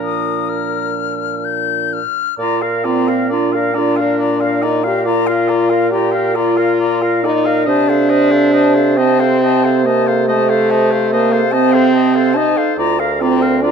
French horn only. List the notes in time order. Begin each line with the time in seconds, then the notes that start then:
Already playing: F3
2.85 C4
3.31 D4
3.75 D4
4.62 D#4
4.85 G4
5.06 F4
5.91 G4
6.35 F4
7.23 D#4
7.66 D4
8.97 C4
9.85 A#3
10.28 A3
11.13 A#3
11.54 C4
12.36 D#4
13.21 C4
13.62 D4